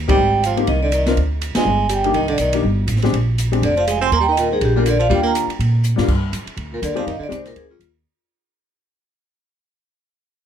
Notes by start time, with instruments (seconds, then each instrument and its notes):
0.08 upright bass G1, baritone saxophone G3, grand piano A#3 C4 D#4 G4, vibraphone G5, kick, ride
0.17 upright bass G#1
0.43 baritone saxophone F3, vibraphone F5, hi-hat pedal, ride
0.57 grand piano A#3 C4 D#4 G4, ride
0.67 upright bass C2, baritone saxophone D#3, vibraphone D#5, kick, ride
0.83 baritone saxophone D3, vibraphone D5
0.92 baritone saxophone D#3, vibraphone D#5, hi-hat pedal, ride
1.06 grand piano C4 D4 F4 A#4, snare, ride
1.17 upright bass D2, kick, ride
1.41 hi-hat pedal, ride
1.55 baritone saxophone G#3, grand piano B3 D4 F4 G#4, vibraphone G#5, muted upright bass stroke, snare, ride
1.65 upright bass G1
1.89 baritone saxophone G3, hi-hat pedal, ride
1.94 vibraphone G5
2.04 grand piano A#3 D4 D#4 G4, ride
2.14 upright bass C2, baritone saxophone D#3, vibraphone D#5, kick, ride
2.28 baritone saxophone D3, ride
2.32 vibraphone D5
2.38 upright bass B1, baritone saxophone D#3, vibraphone D#5, hi-hat pedal, ride
2.53 grand piano A#3 D4 D#4 G4, ride
2.63 upright bass G1, kick
2.87 upright bass A1, hi-hat pedal, ride
2.96 snare
3.02 grand piano G#3 C4 D4 G4, snare, ride
3.12 upright bass A#1, kick, ride
3.38 hi-hat pedal, ride
3.52 grand piano G#3 C4 D4 G4, ride
3.62 upright bass F1, baritone saxophone D3, vibraphone D5, kick, ride
3.76 baritone saxophone F3, vibraphone F5, ride
3.87 baritone saxophone G#3, vibraphone G#5, hi-hat pedal, ride
4.01 baritone saxophone C4, vibraphone C6, ride
4.12 upright bass D#2, baritone saxophone A#3, vibraphone A#5, kick, ride
4.20 baritone saxophone G3, vibraphone G5
4.28 baritone saxophone D#3, vibraphone D#5
4.37 baritone saxophone A#2, vibraphone A#4, hi-hat pedal, ride
4.51 baritone saxophone G#2, vibraphone G#4
4.60 upright bass A#1, baritone saxophone G2, kick, ride
4.65 vibraphone G4
4.76 baritone saxophone A#2, grand piano G3 A#3 D4 F4, vibraphone A#4
4.86 baritone saxophone D3, hi-hat pedal, ride
4.90 vibraphone D5
4.99 baritone saxophone F3, vibraphone F5, ride
5.09 upright bass D#2, baritone saxophone G3, grand piano G3 A#3 D4 F4, kick, ride
5.14 vibraphone G5
5.23 baritone saxophone A#3, vibraphone A#5
5.35 hi-hat pedal, ride
5.47 muted upright bass stroke, ride
5.59 upright bass A#2, kick, ride
5.84 hi-hat pedal
5.96 upright bass G#2, grand piano G3 A#3 D4 F4, snare
6.08 upright bass G2, kick, crash
6.32 upright bass F2, kick, hi-hat pedal, ride
6.46 muted upright bass stroke, ride
6.57 upright bass D2, kick, ride
6.73 baritone saxophone A#2, vibraphone A#4
6.82 upright bass D#2, baritone saxophone D3, vibraphone D5, kick, hi-hat pedal, ride
6.95 baritone saxophone F3, grand piano G#3 C4 D#4 G4, ride
6.99 vibraphone F5
7.07 upright bass F2, baritone saxophone D#3, vibraphone D#5, kick, ride
7.19 baritone saxophone D3, muted upright bass stroke
7.24 vibraphone D5
7.29 upright bass C2, baritone saxophone C3, grand piano G#3 C4 D#4 G4, kick, hi-hat pedal, ride
7.35 vibraphone C5
7.46 baritone saxophone A#2, vibraphone A#4, snare, ride
7.55 upright bass D2, baritone saxophone G#2, vibraphone G#4, kick, ride
7.70 baritone saxophone F2, vibraphone F4
7.80 upright bass D#2, kick, hi-hat pedal, ride